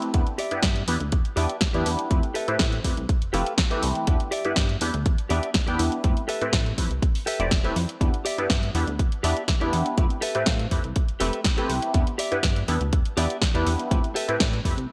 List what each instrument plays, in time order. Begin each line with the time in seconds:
Already playing: analog polysynth A3 C4 E4 G4 B4
0.02 muted clean electric guitar stroke, closed hi-hat
0.14 analog synth bass E2, analog polysynth B3 D4 E4 G4 B4, kick, closed hi-hat
0.27 closed hi-hat
0.38 clean electric guitar G4 D5 E5, open hi-hat
0.51 analog synth bass G2, analog polysynth B3 D4 E4 G4 B4, closed hi-hat
0.63 analog synth bass G2, clean electric guitar G4 D5 E5, kick, snare, closed hi-hat
0.76 closed hi-hat
0.88 analog synth bass E2, analog polysynth B3 D4 E4 G4 B4, open hi-hat
1.00 analog synth bass D2, muted clean electric guitar stroke, closed hi-hat
1.12 analog synth bass E2, kick, closed hi-hat
1.25 closed hi-hat
1.36 analog synth bass E2, analog polysynth B3 D4 E4 G4 B4, clean electric guitar G4 D5 E5, open hi-hat
1.49 closed hi-hat
1.61 kick, snare, closed hi-hat
1.73 analog synth bass E2, analog polysynth B3 D4 E4 G4 B4, clean electric guitar G4 D5 E5, closed hi-hat
1.86 analog synth bass E2, open hi-hat
1.98 muted clean electric guitar stroke, closed hi-hat
2.11 analog synth bass F2, analog polysynth A3 C4 E4 G4 B4, kick, closed hi-hat
2.23 closed hi-hat
2.34 clean electric guitar G4 A4 B4 E5, open hi-hat
2.48 analog synth bass A2, analog polysynth A3 C4 E4 G4 B4, closed hi-hat
2.59 analog synth bass A2, clean electric guitar G4 A4 B4 E5, kick, snare, closed hi-hat
2.73 closed hi-hat
2.84 analog synth bass F2, analog polysynth A3 C4 E4 G4 B4, kick, open hi-hat
2.96 analog synth bass C2, muted clean electric guitar stroke, closed hi-hat
3.09 kick, closed hi-hat
3.22 analog synth bass F1, closed hi-hat
3.33 analog synth bass F1, analog polysynth A3 C4 E4 G4 B4, clean electric guitar G4 A4 B4 F5, open hi-hat
3.46 closed hi-hat
3.58 kick, snare, closed hi-hat
3.70 analog polysynth E3 A3 C4 G4 B4, clean electric guitar G4 A4 B4 E5, closed hi-hat
3.83 analog synth bass C2, open hi-hat
3.95 muted clean electric guitar stroke, closed hi-hat
4.07 analog synth bass E2, analog polysynth B3 D4 E4 G4 B4, kick, closed hi-hat
4.20 closed hi-hat
4.31 clean electric guitar G4 D5 E5, open hi-hat
4.45 analog synth bass G2, analog polysynth B3 D4 E4 G4 B4, closed hi-hat
4.56 analog synth bass G2, clean electric guitar G4 D5 E5, kick, snare, closed hi-hat
4.69 closed hi-hat
4.81 analog synth bass E2, analog polysynth B3 D4 E4 G4 B4, open hi-hat
4.93 analog synth bass D2, muted clean electric guitar stroke, closed hi-hat
5.06 analog synth bass E2, kick, closed hi-hat
5.18 closed hi-hat
5.29 analog synth bass E2, analog polysynth B3 D4 E4 G4 B4, clean electric guitar G4 D5 E5, open hi-hat
5.43 closed hi-hat
5.54 kick, snare, closed hi-hat
5.67 analog synth bass E2, analog polysynth B3 D4 E4 G4 B4, clean electric guitar G4 D5 G5, closed hi-hat
5.79 analog synth bass E2, open hi-hat
5.91 muted clean electric guitar stroke, closed hi-hat
6.04 analog synth bass F2, analog polysynth A3 C4 E4 G4 B4, kick, closed hi-hat
6.17 closed hi-hat
6.28 clean electric guitar G4 A4 B4 E5, open hi-hat
6.41 analog synth bass A2, analog polysynth A3 C4 E4 G4 B4, closed hi-hat
6.52 analog synth bass A2, clean electric guitar G4 A4 B4 E5, kick, snare, closed hi-hat
6.66 closed hi-hat
6.78 analog synth bass F2, analog polysynth A3 C4 E4 G4 B4, kick, open hi-hat
6.90 analog synth bass C2, muted clean electric guitar stroke, closed hi-hat
7.02 kick, closed hi-hat
7.15 open hi-hat
7.26 clean electric guitar G4 A4 B4 E5, open hi-hat
7.39 analog synth bass F1, analog polysynth A3 C4 E4 G4 D5, closed hi-hat
7.51 kick, snare, closed hi-hat
7.64 analog polysynth A3 C4 E4 G4 B4, clean electric guitar G4 A4 B4 E5, closed hi-hat
7.76 analog synth bass F2, open hi-hat
7.88 muted clean electric guitar stroke, closed hi-hat
8.01 analog synth bass E2, analog polysynth B3 D4 E4 G4 B4, kick, closed hi-hat
8.14 closed hi-hat
8.25 clean electric guitar G4 D5 E5, open hi-hat
8.38 analog synth bass G2, analog polysynth B3 D4 E4 G4 B4, closed hi-hat
8.49 analog synth bass G2, clean electric guitar G4 D5 E5, kick, snare, closed hi-hat
8.63 closed hi-hat
8.75 analog synth bass E2, analog polysynth B3 D4 E4 G4 B4, open hi-hat
8.87 analog synth bass D2, muted clean electric guitar stroke, closed hi-hat
8.99 analog synth bass E2, kick, closed hi-hat
9.12 closed hi-hat
9.23 analog synth bass E2, analog polysynth B3 D4 E4 G4 B4, clean electric guitar G4 D5 E5, open hi-hat
9.37 closed hi-hat
9.48 kick, snare, closed hi-hat
9.60 analog synth bass E2, analog polysynth B3 D4 E4 G4 B4, clean electric guitar G4 D5 E5, closed hi-hat
9.73 analog synth bass E2, open hi-hat
9.85 muted clean electric guitar stroke, closed hi-hat
9.97 analog synth bass F2, analog polysynth A3 C4 E4 G4 B4, kick, closed hi-hat
10.10 closed hi-hat
10.21 clean electric guitar G4 A4 B4 E5, open hi-hat
10.35 analog synth bass A2, analog polysynth A3 C4 E4 G4 B4, closed hi-hat
10.46 analog synth bass A2, clean electric guitar G4 A4 B4 F5, kick, snare, closed hi-hat
10.59 closed hi-hat
10.71 analog synth bass F2, analog polysynth A3 C4 E4 G4 B4, kick, open hi-hat
10.83 analog synth bass C2, muted clean electric guitar stroke, closed hi-hat
10.96 kick, closed hi-hat
11.09 analog synth bass F1, closed hi-hat
11.20 analog synth bass F1, analog polysynth A3 C4 E4 G4 B4, clean electric guitar G4 A4 B4 E5, open hi-hat
11.33 closed hi-hat
11.44 kick, snare, closed hi-hat
11.57 analog polysynth A3 C4 E4 G4 B4, clean electric guitar G4 A4 B4 G5, closed hi-hat
11.70 analog synth bass C2, open hi-hat
11.82 muted clean electric guitar stroke, closed hi-hat
11.94 analog synth bass E2, analog polysynth B3 D4 E4 G4 B4, kick, closed hi-hat
12.07 closed hi-hat
12.18 clean electric guitar G4 D5 E5, open hi-hat
12.31 analog synth bass G2, analog polysynth B3 D4 E4 G4 B4, closed hi-hat
12.43 analog synth bass G2, clean electric guitar G4 D5 E5, kick, snare, closed hi-hat
12.56 closed hi-hat
12.68 analog synth bass E2, analog polysynth B3 D4 E4 G4 B4, open hi-hat
12.81 analog synth bass D2, muted clean electric guitar stroke, closed hi-hat
12.93 analog synth bass E2, kick, closed hi-hat
13.05 closed hi-hat
13.17 analog synth bass E2, analog polysynth B3 D4 E4 G4 B4, clean electric guitar G4 D5 E5, open hi-hat
13.30 closed hi-hat
13.42 kick, snare, closed hi-hat
13.54 analog synth bass E2, analog polysynth B3 D4 E4 G4 B4, clean electric guitar G4 D5 E5, closed hi-hat
13.67 analog synth bass E2, open hi-hat
13.79 muted clean electric guitar stroke, closed hi-hat
13.91 analog synth bass F2, analog polysynth A3 C4 E4 G4 B4, kick, closed hi-hat
14.04 closed hi-hat
14.15 clean electric guitar G4 A4 B4 E5, open hi-hat
14.28 analog synth bass A2, analog polysynth A3 C4 E4 G4 B4, closed hi-hat
14.40 analog synth bass A2, clean electric guitar G4 A4 B4 D5, kick, snare, closed hi-hat
14.53 closed hi-hat
14.65 analog synth bass F2, analog polysynth A3 C4 E4 G4 B4, kick, open hi-hat
14.77 analog synth bass C2, muted clean electric guitar stroke, closed hi-hat